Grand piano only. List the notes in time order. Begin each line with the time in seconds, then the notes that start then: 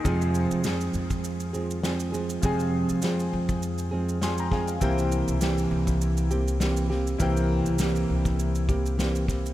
0.04 F4 G#4 C5
0.08 G#5
2.42 F4 G#4 C5
2.46 G#5
4.23 G#5 C6
4.40 G5 A#5
4.52 F5 G#5
4.68 F5
4.81 E4 A#4 C5 G5
7.18 E4 A#4 C5 G5